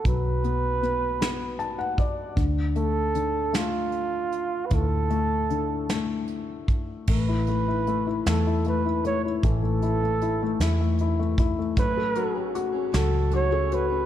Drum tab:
CC |------|------|------|x-----|
HH |xxxxxx|xxxxxx|xxxxxx|-xxxxx|
SD |---o--|---o--|---o--|---o--|
BD |o----o|o-----|o----o|o-----|

CC |------|------|
HH |xxxxxx|xxxxxx|
SD |---o--|---o--|
BD |o----o|o-----|